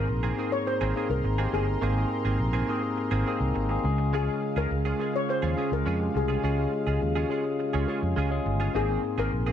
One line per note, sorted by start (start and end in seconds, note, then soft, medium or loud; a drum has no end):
0.00 0.34 G#2 medium
0.00 0.17 A#3 medium
0.00 0.17 C4 medium
0.00 0.17 D#4 medium
0.00 0.18 G#4 medium
0.00 0.54 A#4 medium
0.00 3.80 A#4 medium
0.00 3.80 A#5 medium
0.00 3.80 C6 medium
0.08 0.31 A#1 medium
0.08 muted clean electric guitar stroke soft
0.23 0.36 D#3 medium
0.23 0.37 A#3 medium
0.23 0.37 C4 medium
0.23 0.38 G#4 medium
0.37 0.51 D#3 medium
0.37 0.79 A#3 medium
0.37 0.52 A#3 medium
0.37 0.79 C4 medium
0.37 0.52 C4 medium
0.37 0.79 D#4 medium
0.37 0.79 G#4 medium
0.37 0.51 G#4 medium
0.52 0.67 C#5 medium
0.52 muted clean electric guitar stroke soft
0.67 1.12 C5 medium
0.67 muted clean electric guitar stroke soft
0.81 0.92 G#1 medium
0.81 0.94 D#3 medium
0.81 0.95 A#3 medium
0.81 0.96 C4 medium
0.81 0.96 G#4 medium
0.95 1.09 D#3 medium
0.95 1.26 A#3 medium
0.95 1.10 A#3 medium
0.95 1.27 C4 medium
0.95 1.09 C4 medium
0.95 1.27 D#4 medium
0.95 1.27 G#4 medium
0.95 1.09 G#4 medium
1.10 1.21 C2 medium
1.10 1.51 A#4 medium
1.10 muted clean electric guitar stroke soft
1.24 1.46 G#1 medium
1.24 muted clean electric guitar stroke soft
1.38 1.51 D#3 medium
1.38 1.70 A#3 medium
1.38 1.52 A#3 medium
1.38 1.53 C4 medium
1.38 1.70 C4 medium
1.38 1.70 D#4 medium
1.38 1.70 G4 medium
1.38 1.53 G#4 medium
1.52 1.75 G1 medium
1.52 1.67 D#3 medium
1.52 1.67 A#3 medium
1.52 1.67 C4 medium
1.52 3.80 G#4 medium
1.52 1.66 G#4 medium
1.67 muted clean electric guitar stroke soft
1.82 2.04 G#1 medium
1.82 2.65 G#2 medium
1.82 2.08 D#3 medium
1.82 2.09 A#3 medium
1.82 1.93 A#3 medium
1.82 2.09 C4 medium
1.82 1.93 C4 medium
1.82 1.93 D#4 medium
1.82 2.09 G#4 medium
1.82 1.93 G#4 medium
1.97 2.48 A#3 medium
1.97 2.48 C4 medium
1.97 2.48 D#4 medium
1.97 2.48 G#4 medium
2.10 muted clean electric guitar stroke soft
2.25 2.36 G#1 medium
2.25 2.38 D#3 medium
2.25 2.38 A#3 soft
2.25 2.39 C4 medium
2.25 2.39 G#4 medium
2.39 2.61 A#1 medium
2.39 muted clean electric guitar stroke soft
2.53 2.66 D#3 medium
2.53 2.67 A#3 medium
2.53 2.68 C4 medium
2.53 2.68 G#4 medium
2.68 2.82 D#3 medium
2.68 2.82 A#3 medium
2.68 3.10 A#3 medium
2.68 2.82 C4 medium
2.68 3.10 C4 medium
2.68 3.10 D#4 medium
2.68 2.81 G#4 medium
2.68 3.10 G#4 medium
2.82 muted clean electric guitar stroke soft
2.97 muted clean electric guitar stroke soft
3.11 3.23 G#1 medium
3.11 3.24 D#3 medium
3.11 3.25 A#3 medium
3.11 3.26 C4 medium
3.11 3.26 G#4 medium
3.25 3.40 D#3 medium
3.25 3.40 A#3 medium
3.25 3.57 A#3 medium
3.25 3.39 C4 medium
3.25 3.57 C4 medium
3.25 3.58 D#4 medium
3.25 3.39 G#4 medium
3.25 3.58 G#4 medium
3.40 3.51 C2 medium
3.40 muted clean electric guitar stroke soft
3.55 3.77 G#1 medium
3.55 muted clean electric guitar stroke soft
3.69 3.84 A#3 medium
3.69 3.84 C4 medium
3.69 3.84 D#4 medium
3.69 3.84 G#4 medium
3.69 muted clean electric guitar stroke soft
3.84 4.27 C#2 medium
3.84 4.67 C#3 medium
3.84 4.19 G#3 medium
3.84 8.70 G#3 medium
3.84 4.19 C#4 medium
3.84 4.19 F4 medium
3.84 4.19 G#4 medium
3.84 8.70 F5 medium
3.98 muted clean electric guitar stroke soft
4.13 4.40 G#3 medium
4.13 4.40 C#4 medium
4.13 4.40 F4 medium
4.13 4.40 G#4 medium
4.13 4.58 G#4 medium
4.27 4.79 G#3 medium
4.27 4.79 C#4 medium
4.27 4.79 F4 medium
4.27 4.79 G#4 medium
4.42 muted clean electric guitar stroke soft
4.56 4.67 C#2 medium
4.56 4.70 G#3 soft
4.56 4.70 C#4 medium
4.56 4.70 F4 medium
4.56 4.70 G#4 medium
4.56 5.16 A#4 medium
4.71 4.92 C#2 medium
4.71 muted clean electric guitar stroke soft
4.85 4.98 G#3 medium
4.85 4.99 C#4 medium
4.85 4.99 F4 medium
4.85 5.00 G#4 medium
4.99 5.40 G#3 medium
4.99 5.13 G#3 medium
4.99 5.41 C#4 medium
4.99 5.14 C#4 medium
4.99 5.41 F4 medium
4.99 5.13 F4 medium
4.99 5.41 G#4 medium
4.99 5.13 G#4 medium
5.14 5.30 C#5 medium
5.14 muted clean electric guitar stroke soft
5.28 5.74 C5 medium
5.28 muted clean electric guitar stroke soft
5.42 5.54 D#2 medium
5.42 5.55 G#3 medium
5.42 5.56 C#4 medium
5.42 5.57 F4 medium
5.42 5.57 G#4 medium
5.57 5.71 G#3 medium
5.57 5.88 G#3 medium
5.57 5.71 C#4 medium
5.57 5.88 C#4 medium
5.57 5.88 F4 medium
5.57 5.71 F4 medium
5.57 5.88 G#4 medium
5.57 5.70 G#4 medium
5.71 5.83 C#2 medium
5.71 6.17 A#4 medium
5.71 muted clean electric guitar stroke soft
5.85 6.08 F2 medium
5.85 6.03 G#3 medium
5.85 6.00 C#4 medium
5.85 5.99 F4 medium
5.85 5.99 G#4 medium
6.00 6.31 G#3 medium
6.00 6.31 C#4 medium
6.00 6.32 F4 medium
6.00 6.32 G4 medium
6.00 muted clean electric guitar stroke soft
6.14 6.37 C2 medium
6.14 6.98 C#3 medium
6.14 8.43 G#4 medium
6.14 muted clean electric guitar stroke soft
6.28 6.42 G#3 soft
6.28 6.42 C#4 medium
6.28 6.43 F4 medium
6.28 6.43 G#4 medium
6.43 6.65 C#2 medium
6.43 6.70 G#3 medium
6.43 6.54 G#3 medium
6.43 6.70 C#4 medium
6.43 6.54 C#4 medium
6.43 6.54 F4 medium
6.43 6.71 F4 medium
6.43 6.71 G#4 medium
6.43 6.55 G#4 medium
6.57 7.09 G#3 medium
6.57 7.09 C#4 medium
6.57 7.09 F4 medium
6.57 7.10 G#4 medium
6.72 muted clean electric guitar stroke soft
6.87 6.98 C#2 medium
6.87 7.00 G#3 soft
6.87 7.00 C#4 soft
6.87 7.01 F4 medium
6.87 7.01 G#4 medium
7.01 7.23 D#2 medium
7.01 muted clean electric guitar stroke soft
7.15 7.29 G#3 medium
7.15 7.29 C#4 medium
7.15 7.30 F4 medium
7.15 7.30 G#4 medium
7.30 7.71 G#3 medium
7.30 7.44 G#3 medium
7.30 7.71 C#4 medium
7.30 7.44 C#4 medium
7.30 7.71 F4 medium
7.30 7.44 F4 medium
7.30 7.72 G#4 medium
7.30 7.44 G#4 medium
7.45 muted clean electric guitar stroke soft
7.59 muted clean electric guitar stroke soft
7.73 7.85 C#2 medium
7.73 7.87 G#3 medium
7.73 7.87 C#4 medium
7.73 7.88 F4 medium
7.73 7.88 G#4 medium
7.88 8.19 G#3 medium
7.88 8.02 G#3 medium
7.88 8.19 C#4 medium
7.88 8.02 C#4 medium
7.88 8.19 F4 medium
7.88 8.02 F4 medium
7.88 8.19 G#4 medium
7.88 8.01 G#4 medium
8.02 8.13 F2 medium
8.02 muted clean electric guitar stroke soft
8.16 8.38 C#2 medium
8.16 8.34 G#3 medium
8.16 8.31 C#4 medium
8.16 8.30 F4 medium
8.16 8.30 G#4 loud
8.30 8.62 G#3 medium
8.30 8.62 C#4 medium
8.30 8.62 F4 medium
8.30 8.62 G#4 medium
8.30 muted clean electric guitar stroke soft
8.46 8.67 G1 medium
8.46 muted clean electric guitar stroke soft
8.60 8.74 G#3 soft
8.60 8.74 C#4 soft
8.60 8.74 F4 medium
8.60 8.74 G#4 medium
8.74 8.96 G#1 medium
8.74 9.52 G#2 medium
8.74 9.01 D#3 medium
8.74 8.85 A#3 medium
8.74 9.01 A#3 medium
8.74 8.85 C4 medium
8.74 9.01 C4 medium
8.74 8.85 D#4 medium
8.74 8.85 G#4 medium
8.74 9.02 G#4 medium
8.74 9.20 G#4 medium
8.74 9.52 A#4 medium
8.74 9.52 G#5 medium
8.74 9.52 C6 medium
8.88 9.40 A#3 medium
8.88 9.40 C4 medium
8.88 9.40 D#4 medium
8.88 9.41 G#4 medium
9.03 muted clean electric guitar stroke soft
9.18 9.29 G#1 medium
9.18 9.31 D#3 medium
9.18 9.32 A#3 medium
9.18 9.32 C4 medium
9.18 9.31 G#4 medium
9.18 9.52 A#4 medium
9.32 9.52 A#1 medium
9.32 muted clean electric guitar stroke soft
9.46 9.52 D#3 medium
9.46 9.52 A#3 medium
9.46 9.52 C4 medium
9.46 9.52 G#4 medium